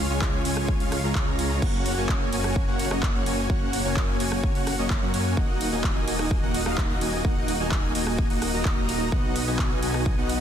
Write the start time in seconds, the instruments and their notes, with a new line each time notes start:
0.10 detuned saw bass C#2, supersaw synth G#3 C#4 F4 C#5 G#5
0.22 kick, clap
0.45 detuned saw bass C#2, supersaw synth G#3 C#4 F4 C#5 G#5, open hi-hat
0.57 cross-stick, open hi-hat
0.68 kick
0.80 detuned saw bass C#2, supersaw synth G#3 C#4 F4 C#5 F5, open hi-hat
0.92 cross-stick, open hi-hat
1.04 detuned saw bass C#2, supersaw synth G#3 C#4 F4 C#5 A#5
1.15 detuned saw bass C#2, supersaw synth G#3 C#4 F4 C#5 A#5, kick, clap
1.39 open hi-hat
1.62 detuned saw bass F#1, supersaw synth A#3 C#4 F#4 C#5 F#5, kick, crash
1.86 open hi-hat
1.97 detuned saw bass F#1, supersaw synth A#3 C#4 F#4 C#5 G#5
2.09 kick, clap
2.33 detuned saw bass F#1, supersaw synth A#3 C#4 F#4 C#5 G#5, open hi-hat
2.44 cross-stick, open hi-hat
2.56 kick
2.68 detuned saw bass F#1, supersaw synth A#3 C#4 F#4 C#5 F#5
2.79 open hi-hat
2.91 detuned saw bass F#1, supersaw synth A#3 C#4 F#4 C#5 D#5, cross-stick
3.03 kick, clap
3.15 detuned saw bass F#1, supersaw synth A#3 C#4 F#4 C#5 F#5
3.26 detuned saw bass F#1, supersaw synth A#3 C#4 F#4 C#5 G#5, open hi-hat
3.50 detuned saw bass F#1, supersaw synth A#3 C#4 F#4 C#5 F#5, kick
3.73 open hi-hat
3.85 detuned saw bass F#1, supersaw synth A#3 C#4 F#4 C#5 G#5
3.97 kick, clap
4.20 detuned saw bass F#1, supersaw synth A#3 C#4 F#4 C#5 G#5, open hi-hat
4.32 cross-stick
4.44 kick
4.55 detuned saw bass F#1, supersaw synth A#3 C#4 F#4 C#5 F#5, open hi-hat
4.67 cross-stick, open hi-hat
4.79 detuned saw bass F#1, supersaw synth A#3 C#4 F#4 C#5 D#5
4.90 kick, clap
5.02 detuned saw bass F#2, supersaw synth A#3 C#4 F#4 C#5 F#5
5.14 detuned saw bass F#2, supersaw synth A#3 C#4 F#4 C#5 G#5, open hi-hat
5.37 detuned saw bass D#1, supersaw synth A#3 D#4 F#4 D#5 F#5, kick
5.61 open hi-hat
5.72 detuned saw bass D#1, supersaw synth A#3 D#4 F#4 D#5 G#5
5.84 kick, clap
6.08 detuned saw bass D#1, supersaw synth A#3 D#4 F#4 D#5 G#5, open hi-hat
6.19 cross-stick, open hi-hat
6.31 kick
6.43 detuned saw bass D#1, supersaw synth A#3 D#4 F#4 D#5 F#5
6.54 open hi-hat
6.66 detuned saw bass D#1, supersaw synth A#3 D#4 F#4 D#5 F5, cross-stick
6.78 kick, clap
6.90 detuned saw bass D#1, supersaw synth A#3 D#4 F#4 D#5 F#5
7.01 detuned saw bass D#1, supersaw synth A#3 D#4 F#4 D#5 G#5, open hi-hat
7.25 detuned saw bass D#1, supersaw synth A#3 D#4 F#4 D#5 F#5, kick
7.48 open hi-hat
7.60 detuned saw bass D#1, supersaw synth A#3 D#4 F#4 D#5 G#5
7.72 kick, clap
7.95 detuned saw bass D#1, supersaw synth A#3 D#4 F#4 D#5 G#5, open hi-hat
8.07 cross-stick
8.19 kick
8.30 detuned saw bass D#1, supersaw synth A#3 D#4 F#4 D#5 F#5, open hi-hat
8.42 cross-stick, open hi-hat
8.54 detuned saw bass D#1, supersaw synth A#3 D#4 F#4 D#5 A#5
8.65 detuned saw bass D#1, supersaw synth A#3 D#4 F#4 D#5 A#5, kick, clap
8.89 open hi-hat
9.12 detuned saw bass B1, supersaw synth B3 D#4 F#4 D#5 F#5, kick
9.36 open hi-hat
9.47 detuned saw bass B1, supersaw synth B3 D#4 F#4 D#5 G#5
9.59 kick, clap
9.83 detuned saw bass B1, supersaw synth B3 D#4 F#4 D#5 G#5, open hi-hat
9.94 cross-stick, open hi-hat
10.06 kick
10.18 detuned saw bass B1, supersaw synth B3 D#4 F#4 D#5 F#5
10.29 open hi-hat